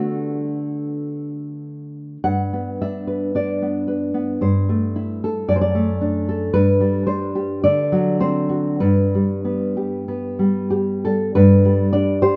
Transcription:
nylon-string guitar
Already playing: D3 A3 D4 F#4
2.24 G2 F#5
2.53 B3
2.81 D4 E5
3.07 B4
3.35 D4 D5
3.62 B3
3.88 B4
4.14 B3
4.41 G2 C5
4.69 A3
4.96 E4
5.24 A4
5.48 F#2 D5
5.56 C5
5.61 D5
5.75 A3
6.01 D4
6.29 A4
6.53 G2 B4
6.80 G3
7.07 D4 C5
7.35 G4
7.64 D3 D5
7.92 F#3
8.20 C4 C5
8.49 F#4
8.80 G2 B4
9.15 G3
9.45 B3
9.77 G4
10.08 B3
10.39 G3
10.70 G4
11.05 G3 A4
11.35 G2 B4
11.65 G3
11.93 D4 D5
12.22 G4 C5

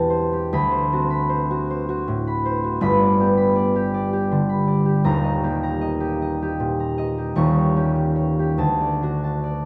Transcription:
harp
Already playing: E1 E2 E3 C4 G4 G5 A5
0.10 C5
0.33 G4
0.53 D2 B5
0.71 C5
0.93 C4 F#4
1.10 B5
1.29 C5
1.51 F#4
1.70 C5
1.89 F#4
2.08 A2
2.27 B5
2.45 C5
2.64 F#4
2.81 G1 G2 B5
3.01 D5
3.20 B3 G4
3.37 B5
3.56 D5
3.76 G4
3.94 D5
4.13 G4
4.31 D3
4.49 B5
4.67 D5
4.85 G4
5.04 D#1 D#2 A#5
5.24 D#5
5.43 A#3 G4
5.63 A#5
5.81 D#5
6.00 G4
6.22 D#5
6.42 G4
6.60 A#2
6.80 A#5
6.98 D#5
7.18 G4
7.36 D#1 D#2 C#6
7.57 C#5
7.76 C#4 G4
7.96 C#6
8.16 C#5
8.39 G4
8.58 D2 A5
8.81 D5
9.02 D4 F#4
9.24 A5
9.44 D5

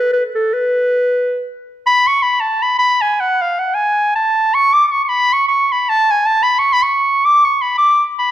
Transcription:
clarinet
Already playing: B4
0.13 B4
0.35 A4
0.54 B4
1.86 B5
2.07 C#6
2.22 B5
2.40 A5
2.62 B5
2.79 B5
3.01 G#5
3.20 F#5
3.42 F5
3.59 F#5
3.74 G#5
4.16 A5
4.54 C#6
4.73 D6
4.88 D6
4.92 C#6
5.05 C#6
5.09 B5
5.33 C#6
5.48 C#6
5.72 B5
5.89 A5
6.11 G#5
6.26 A5
6.43 B5
6.59 C#6
6.73 B5
6.83 C#6
7.25 D6
7.45 C#6
7.62 B5
7.78 D6
8.19 B5

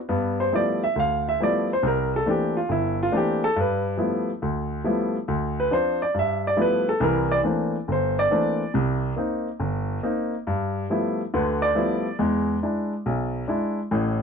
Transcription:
grand piano
0.09 G2 B3
0.40 C5
0.52 F3 G3 A3 B3 E4 D5
0.84 E5
0.96 D2 F5
1.29 E5
1.40 F3 G3 A3 B3 E4 D5
1.73 C5
1.83 C2
1.87 A#4
2.16 A4
2.26 E3 A3 A#3 C4 D4
2.30 G4
2.57 F4
2.69 G1 E4
3.03 F4
3.12 E3 A3 A#3 C4 D4
3.17 G4
3.44 A4
3.56 G2
3.61 B4
3.97 F3 G3 A3 B3 E4
4.42 D2
4.84 F3 G3 A3 B3 E4
5.28 D2
5.60 B4
5.71 F3 C4 D4 C5
6.02 D5
6.14 G2
6.19 E5
6.47 D5
6.57 F3 G3 A3 B3 E4
6.62 B4
6.89 A4
7.00 C2 E3 A#4
7.32 D5
7.43 E3 A3 A#3 C4 D4
7.88 G1
7.92 C5
8.19 D5
8.31 E3 A3 A#3 C4 D4
8.74 C2 C3
9.16 A#3 C4 D#4
9.60 G1
10.03 A#3 C4 D#4
10.47 G2
10.90 F3 G3 A3 B3 E4
11.34 D2 D3 B4
11.62 D5
11.75 F3 G3 A3 B3 E4
12.19 E2 G#3
12.63 G#3 D4 E4
13.06 B1
13.48 G#3 D4 E4
13.91 A1 A2

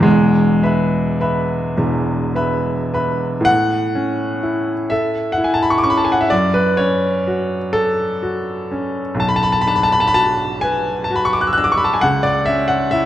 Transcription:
grand piano
0.00 E2 G#3
0.05 E1
0.63 B4 E5 B5
1.21 B4 E5 B5
1.78 E1 E2
2.35 B4 E5 B5
2.94 B4 E5 B5
3.41 A2
3.45 F#5
3.95 C#4
4.43 E4
4.90 A4 E5
5.32 F#5
5.38 E4
5.44 G#5
5.54 A5
5.62 B5
5.70 C#6
5.78 D6
5.84 C#4 C#6
5.90 B5
5.97 A5
6.05 G#5
6.12 F#5
6.21 E5
6.30 F#2 D5
6.54 B4
6.77 C#4 C#5
7.27 F#4
7.73 A4
8.23 F#4
8.71 C#4
9.15 B1
9.20 A5
9.28 B5
9.36 A5
9.43 B5
9.52 A5
9.61 B5
9.67 D4 A5
9.76 B5
9.83 A5
9.92 B5
10.00 A5
10.07 B5
10.14 F#4 A5
10.61 B4 G#5
11.04 A5
11.11 F#4
11.16 B5
11.25 C#6
11.33 D6
11.41 F#6
11.47 E6
11.53 F#6
11.58 D4 E6
11.64 D6
11.72 C#6
11.78 B5
11.84 A5
11.94 G#5
12.01 C#2 F#5
12.23 D5
12.46 C#4 E5
12.68 F#5
12.91 E4 E5

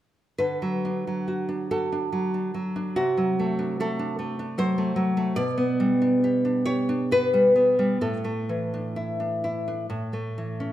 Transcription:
nylon-string guitar
0.38 D3 B4
0.62 F#3
0.85 D4
1.07 F#3
1.28 F#4
1.49 D4
1.71 F#4 A4
1.92 D4
2.12 F#3
2.34 D4
2.54 F#3
2.76 D4
2.96 C3 F#4
3.17 F#3
3.39 A3
3.59 D4
3.80 A3 A4
3.99 D4
4.19 A3
4.39 D4
4.58 F#3 C5
4.78 A3
4.96 F#3
5.17 A3
5.36 B2 D5
5.58 B3
5.80 G3
6.02 D4
6.24 G4
6.45 D4
6.65 G4 C#5
6.89 D4
7.11 B3 B4
7.34 G3
7.56 B3
7.79 G3
8.01 A2 A4
8.24 A3
8.49 E3
8.74 D4
8.96 E4
9.20 D4
9.44 E4
9.68 D4
9.90 A2
10.13 A3
10.38 E3
10.60 C#4

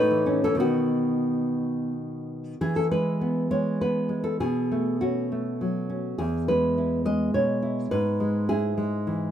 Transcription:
nylon-string guitar
Already playing: A2 D#4 B4
0.10 E3
0.26 C#4
0.44 E3 C#4 A4
0.55 B2 D#3
0.60 B3 F#4
2.61 E3 G#4
2.76 A4
2.91 G#3 B4
3.21 B3
3.51 G#3 C#5
3.81 B3 B4
4.09 G#3
4.24 A4
4.40 B2 G#4
4.71 A3
5.01 C#4 F#4
5.32 A3
5.61 F#3
5.89 C#4
6.18 E2 G#4
6.48 G#3 B4
6.78 E4
7.05 G#3 D#5
7.34 B2 C#5
7.62 E4
7.91 G#2 B4
8.20 G#3
8.49 E4 G#4
8.78 G#3
9.07 E3

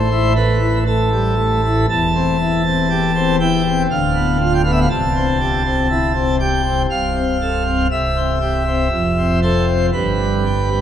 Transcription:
pipe organ
Already playing: A1 A2 C5
0.11 E4
0.35 A3 B4
0.61 E4
0.86 A3 A4
1.12 G3
1.38 A3
1.64 E4
1.89 E1 E2 A5
2.15 C4
2.40 E4
2.65 C4
2.90 G4
3.15 C4
3.40 E4 G5
3.66 C4
3.90 D1 D2 F5
4.15 B3
4.40 F4
4.54 G5
4.63 B3 F5
4.72 E5
4.81 F5
4.90 C1 C2 A5
5.15 C4
5.40 G4
5.65 C4
5.90 E4
6.15 C4
6.40 G4 G5
6.65 C4
6.90 C1 C2 F5
7.16 C4
7.41 A4
7.66 C4
7.91 C1 C2 E5
8.16 C4
8.41 G4
8.66 C4
8.91 F1 F2
9.18 C4
9.42 A4 C5
9.68 C4
9.93 G1 G2 B4
10.20 G3
10.46 G4
10.72 G3

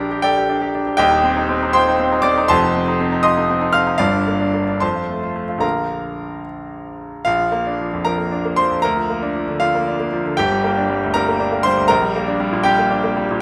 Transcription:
grand piano
Already playing: A#1 G4 A#4 G5 A#5
0.00 D4
0.11 G4
0.22 G4 A4 D5 G5
0.37 G4
0.49 D4
0.62 G4
0.75 D4
0.87 G4
0.97 D#1 D#2 G4 D#5 G5
1.11 D#4
1.24 C4
1.37 D#4
1.49 C4
1.63 D#4
1.73 F4 C5 G5 C6
1.88 D#4
2.00 C4
2.12 D#4
2.22 C4 D5 D6
2.38 D#4
2.48 F1 F2 C5 A5 C6
2.63 D#4
2.76 C4
2.88 D#4
3.00 C4
3.12 D#4
3.23 F4 D#5 C6 D#6
3.38 D#4
3.50 C4
3.61 D#4
3.73 C4 F5 F6
3.87 D#4
3.98 G1 G2 F4 D5 F5
4.13 D4
4.28 A#3
4.41 D4
4.54 A#3
4.69 D4
4.80 F2 C5 A5 C6
4.95 F4
5.09 A3
5.23 F4
5.36 A3
5.49 F4
5.58 A#1 D3 A#3 F4 F5 A#5
5.62 A#4
7.25 A#1 F4 F5
7.39 F3
7.52 A#3
7.67 D4
7.81 F3
7.93 F2
8.05 F3 A#4 A#5
8.18 A#3
8.32 D4
8.45 A#3
8.56 F3 C5 C6
8.71 F2
8.82 D2 A#4 A#5
8.97 F3
9.10 A#3
9.22 D4
9.35 F3
9.48 D3
9.60 F3 F4 F5
9.75 A#3
9.88 D4
10.00 A#3
10.13 F3
10.25 D3
10.37 G1 G4 G5
10.52 G3
10.64 A#3
10.78 D4
10.90 G3
11.03 D2
11.14 G3 A#4 A#5
11.29 A#3
11.40 D4
11.52 A#3
11.63 G3 C5 C6
11.77 D2
11.88 A#1 A#4 A#5
12.02 G3
12.16 A#3
12.28 D4
12.40 G3
12.53 A#2
12.63 G3 G4 G5
12.79 A#3
12.91 D4
13.04 A#3
13.17 G3
13.31 A#2

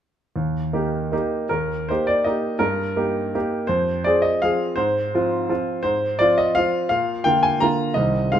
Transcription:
grand piano
0.36 D#2
0.73 A#3 D#4 G4
1.12 A#3 D#4 G4
1.49 D#2 A#4
1.89 A#3 D#4 G4 C5
2.07 D5
2.24 A#3 D#4 G4 D#5
2.59 G2 A#4
2.96 A#3 D#4 G4
3.35 A#3 D#4 G4
3.67 F2 C5
4.04 F3 C4 G#4 D5
4.22 D#5
4.42 F3 C4 G#4 F5
4.76 G#2 C5
5.15 F3 C4 F4
5.49 F3 C4 F4
5.83 G#2 C5
6.19 F3 C4 F4 D5
6.38 D#5
6.55 F3 C4 F4 F5
6.89 A#2 F5
7.24 D3 A#3 F4 G5
7.43 G#5
7.60 D3 A#3 F4 A#5
7.94 C2 D#3 G3 C4 D#5
8.32 G#2 D#3 G#3 C4 F5

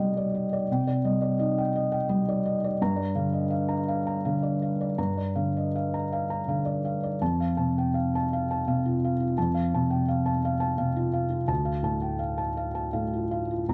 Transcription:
felt piano
Already playing: C3 G3 D#4 D5 G5
0.00 D#5
0.17 D5
0.34 D#5
0.53 D5
0.71 C3 G5
0.87 D5
1.05 G3 D#5
1.22 D5
1.39 D#4 D#5
1.58 G5
1.75 D#5
1.92 G5
2.09 G3 D#5
2.29 D5
2.45 D#5
2.64 D5
2.81 G2 A#5
2.96 D5
3.15 D3 F5
3.33 D#5
3.50 F5
3.69 A#5
3.88 F5
4.07 A#5
4.25 D3 F5
4.43 D5
4.62 F5
4.81 D5
4.98 G2 A#5
5.17 D5
5.36 D3 F5
5.57 D#5
5.76 F5
5.94 A#5
6.12 F5
6.30 A#5
6.48 D3 F5
6.65 D5
6.85 F5
7.03 D5
7.21 F2 A5
7.40 F5
7.57 C3 A5
7.78 G5
7.94 F5
8.15 A5
8.33 F5
8.51 A5
8.67 C3 F5
8.85 F4
9.04 F5
9.20 F4
9.38 F2 A5
9.54 F5
9.74 C3 A5
9.90 G5
10.08 F5
10.26 A5
10.45 F5
10.60 A5
10.78 C3 F5
10.96 F4
11.13 F5
11.30 F4
11.48 D2 A5
11.65 F5
11.83 A2 A5
12.02 G5
12.19 F5
12.38 A5
12.57 F5
12.75 A5
12.93 A2 F5
13.13 F4
13.31 F5
13.51 F4
13.69 C2 A#5

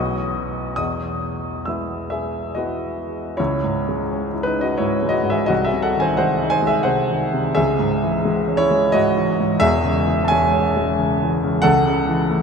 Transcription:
grand piano
Already playing: B1 F#3 B3 F#4 D#5 D#6
0.76 E2 D#5 D#6
1.65 G#3 B3 E4 E5 E6
2.10 G#4 E5
2.55 G#3 B3 E4 F#4 D#5
3.37 C#2 E4 C#5
3.64 G#2
3.89 G#3
4.11 C#4
4.34 E4
4.43 D#4 B4
4.58 C#4 D#5
4.62 F#4
4.78 G#2 E4 C#5
5.03 G#3
5.09 F#4 D#5
5.23 G#2
5.30 G#4 E5
5.46 C2 F#4 D#5
5.65 G#4 E5
5.73 C3
5.82 A4 F#5
5.96 D#3 G#5
6.02 C5
6.17 G#3 C5 F#5
6.42 D#4
6.50 C5 G#5
6.62 G#3
6.67 G#4 E5
6.83 C3 C5 F#5
7.10 D#3
7.33 C3
7.55 C#2 G#4 E5
7.79 G#2
8.03 E3
8.25 G#3
8.48 C#4
8.57 E4 C#5
8.71 G#3
8.92 G#2 F#4 D#5
9.16 E3
9.40 G#2
9.60 E1 E2 G#4 E5
9.84 C#3
10.07 E3
10.25 G#5 A5
10.30 G#3 C#5
10.53 C#4
10.77 G#3
10.98 C#3
11.23 E3
11.44 C#3
11.62 C#2 A4 F#5
11.86 C#3
12.09 E3
12.31 A3

